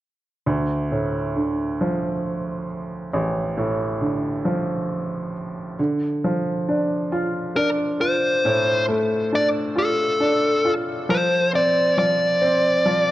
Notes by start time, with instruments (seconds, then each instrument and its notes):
0.47 upright piano D2
0.92 upright piano A2
1.36 upright piano D3
1.81 upright piano F3
3.13 upright piano A1
3.57 upright piano A2
4.01 upright piano D3
4.45 upright piano F3
5.79 upright piano D3
6.24 upright piano F3
6.69 upright piano D4
7.12 upright piano F4
7.56 upright piano D4, lead electric guitar A#4
8.01 upright piano F4, lead electric guitar C5
8.45 upright piano A2
8.88 upright piano A3
9.32 upright piano D4, lead electric guitar D5
9.76 upright piano F4, lead electric guitar A4
10.20 upright piano D4
10.65 upright piano F4
11.09 upright piano F3, lead electric guitar C5
11.53 upright piano C4, lead electric guitar D5
11.98 upright piano F3, lead electric guitar D5
12.41 upright piano C4
12.86 upright piano F3